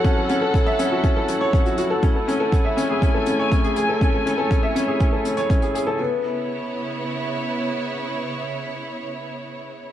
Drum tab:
HH |x-x-x-x-x-x-xxx-|x-x-x-x-x-x-xxx-|x-x-x-x-x-xxxxx-|----------------|
BD |o---o---o---o---|o---o---o---o---|o---o---o---o---|----------------|

HH |----------------|
BD |----------------|